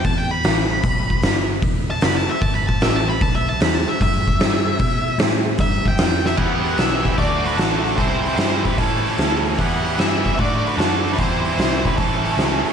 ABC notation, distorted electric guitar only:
X:1
M:4/4
L:1/8
Q:"Swing" 1/4=151
K:Em
V:1 name="Distorted electric guitar"
z8 | z8 | z8 | z8 |
[E,B,EG]4 [D,A,DF]4 | [C,E,G,CE]4 [A,,E,A,^CE]4 | [E,G,B,E]4 [D,A,DF]4 | [C,E,G,CE]4 [A,,E,A,^CE]4 |]